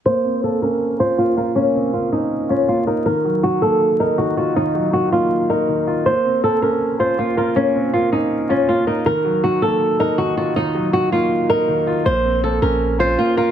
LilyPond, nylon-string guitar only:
\new Staff \with { instrumentName = "Nylon-string guitar" } { \time 4/4 \key bes \minor \tempo 4 = 160 c''4 a'8 bes'4 c''8 f'8 f'8 | des'4 f'8 ees'4 des'8 f'8 ees'8 | bes'4 ges'8 a'4 bes'8 ges'8 ges'8 | ees'4 ges'8 f'4 bes'4. |
c''4 a'8 bes'4 c''8 f'8 f'8 | des'4 f'8 ees'4 des'8 f'8 ees'8 | bes'4 ges'8 a'4 bes'8 ges'8 ges'8 | ees'4 ges'8 f'4 bes'4. |
c''4 a'8 bes'4 c''8 f'8 f'8 | }